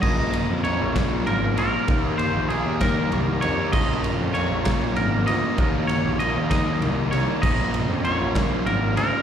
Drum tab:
CC |x-----|------|x-----|------|
RD |-xxxxx|xxxxxx|-xxxxx|xxxxxx|
SD |---o--|---o--|---o--|---o--|
BD |o--o--|o--o--|o--o--|o--o--|

CC |x-----|
RD |-xxxxx|
SD |---o--|
BD |o--o--|